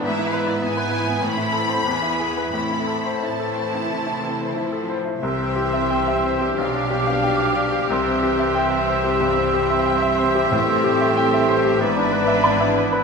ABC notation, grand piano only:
X:1
M:4/4
L:1/16
Q:1/4=91
K:Am
V:1 name="Grand piano"
^G,, E B E B, B E B, A,, E A c E,, E ^G B | A,, E A c E A c E E, E A c E A c E | [K:C] C,, C G e g e c G B,,, D G f g f d G | C,, C G e g e c G G,, C G e g e c G |
A,, C G e g e c G ^G,, D B e b e d B |]